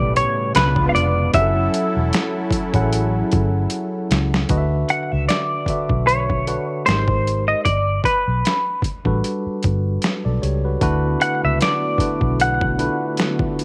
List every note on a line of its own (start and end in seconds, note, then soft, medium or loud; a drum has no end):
0.00 0.24 B1 medium
0.00 0.56 A2 loud
0.00 1.31 B2 medium
0.00 0.53 C#3 medium
0.00 0.53 G3 medium
0.00 0.53 A3 medium
0.00 0.56 A3 loud
0.00 0.57 C#4 loud
0.00 0.57 G4 loud
0.00 0.56 B4 loud
0.00 0.16 D5 medium
0.16 0.55 C#5 medium
0.16 closed hi-hat medium
0.54 0.88 C#2 loud
0.54 1.26 C#3 medium
0.54 1.26 G#3 medium
0.54 1.33 B3 medium
0.54 1.33 D4 medium
0.54 1.26 D4 medium
0.54 1.33 F4 medium
0.54 1.26 F4 medium
0.54 0.89 B4 medium
0.54 1.27 B4 medium
0.54 snare loud
0.54 closed hi-hat medium
0.76 kick medium
0.89 0.94 F5 medium
0.95 1.27 F1 loud
0.95 1.34 D5 medium
0.95 closed hi-hat medium
1.33 1.67 F#1 loud
1.33 4.46 F#3 medium
1.33 2.57 F#3 medium
1.33 4.46 C#4 medium
1.33 2.57 C#4 medium
1.33 4.46 E4 medium
1.33 2.58 E4 medium
1.33 1.42 G4 medium
1.33 4.46 A4 medium
1.33 3.67 E5 loud
1.33 2.58 F#5 loud
1.33 kick loud
1.33 closed hi-hat medium
1.41 2.61 A4 medium
1.74 closed hi-hat medium
1.96 2.10 E1 medium
2.13 snare loud
2.13 closed hi-hat medium
2.51 muted fingered electric bass stroke soft
2.51 kick medium
2.51 closed hi-hat medium
2.74 3.22 A1 loud
2.74 4.12 F#3 medium
2.74 4.13 C#4 medium
2.74 4.13 E4 medium
2.74 2.81 G#4 medium
2.74 4.13 F#5 medium
2.74 kick medium
2.74 closed hi-hat soft
2.82 4.16 A4 medium
2.93 closed hi-hat medium
3.32 3.66 G1 medium
3.32 kick loud
3.32 closed hi-hat medium
3.70 closed hi-hat medium
4.11 4.44 C#2 medium
4.11 snare medium
4.11 closed hi-hat medium
4.34 snare medium
4.49 4.83 D2 medium
4.49 5.56 D3 medium
4.49 5.56 D4 medium
4.49 5.57 F#4 medium
4.49 5.57 B4 medium
4.49 4.58 D#5 medium
4.49 kick loud
4.49 closed hi-hat medium
4.58 5.60 E5 loud
4.89 5.12 F#5 medium
4.89 closed hi-hat medium
5.12 5.27 C#2 medium
5.12 5.28 E5 medium
5.28 6.04 D5 medium
5.28 snare loud
5.28 closed hi-hat medium
5.66 6.39 D3 medium
5.66 6.39 D4 medium
5.66 6.40 F#4 medium
5.66 6.40 B4 medium
5.66 6.40 E5 medium
5.66 muted fingered electric bass stroke soft
5.66 kick medium
5.66 closed hi-hat medium
5.89 6.56 B1 medium
5.89 kick medium
6.07 6.85 C#5 medium
6.07 closed hi-hat medium
6.30 kick medium
6.46 6.86 D3 medium
6.46 6.87 D4 medium
6.46 6.87 F#4 medium
6.46 6.87 B4 medium
6.46 6.87 F#5 medium
6.46 closed hi-hat medium
6.86 7.53 G#1 medium
6.86 7.57 G#3 medium
6.86 7.58 D#4 medium
6.86 7.58 G4 medium
6.86 7.58 A#4 medium
6.86 7.44 C5 medium
6.86 7.58 C5 medium
6.86 snare medium
6.86 closed hi-hat medium
7.08 kick medium
7.27 closed hi-hat medium
7.48 7.64 D#5 medium
7.65 7.99 G1 loud
7.65 8.05 D5 medium
7.65 kick loud
7.65 closed hi-hat medium
8.04 8.80 B4 medium
8.04 kick medium
8.04 closed hi-hat medium
8.28 8.42 B1 medium
8.45 snare medium
8.45 closed hi-hat medium
8.82 muted fingered electric bass stroke soft
8.82 kick medium
8.82 closed hi-hat medium
9.05 9.20 A1 medium
9.05 10.44 G3 medium
9.05 10.44 D4 medium
9.05 10.02 F#4 medium
9.05 10.03 A4 medium
9.05 10.03 B4 medium
9.05 kick medium
9.24 closed hi-hat medium
9.46 muted fingered electric bass stroke soft
9.63 9.97 G1 medium
9.63 kick medium
9.63 closed hi-hat medium
10.02 snare loud
10.02 closed hi-hat medium
10.25 10.40 B1 medium
10.25 10.42 A4 medium
10.25 10.41 D5 medium
10.42 10.75 C#2 medium
10.42 10.63 G4 medium
10.42 10.63 C#5 medium
10.42 closed hi-hat medium
10.65 10.81 F#4 medium
10.65 10.82 B4 medium
10.81 11.15 D2 loud
10.81 11.88 D3 loud
10.81 13.64 D3 medium
10.81 13.64 A3 medium
10.81 13.64 B3 medium
10.81 11.88 D4 medium
10.81 11.88 E4 medium
10.81 13.64 F#4 medium
10.81 11.89 F#4 medium
10.81 11.89 B4 loud
10.81 kick loud
10.81 closed hi-hat medium
11.21 11.44 F#5 medium
11.21 closed hi-hat medium
11.44 11.58 C#2 medium
11.44 11.60 E5 medium
11.61 12.41 D5 medium
11.61 snare loud
11.61 closed hi-hat medium
11.98 12.71 D3 medium
11.98 12.71 D4 medium
11.98 12.71 E4 medium
11.98 12.71 F#4 medium
11.98 12.72 B4 medium
11.98 muted fingered electric bass stroke soft
11.98 kick medium
11.98 closed hi-hat medium
12.21 12.88 B1 medium
12.21 kick medium
12.40 13.64 F#5 medium
12.40 closed hi-hat medium
12.61 kick medium
12.78 13.64 D3 medium
12.78 13.64 D4 medium
12.78 13.64 E4 medium
12.78 12.86 F4 medium
12.78 13.64 B4 medium
12.78 closed hi-hat medium
12.86 13.64 F#4 medium
13.17 snare loud
13.17 closed hi-hat medium
13.39 kick medium
13.59 closed hi-hat medium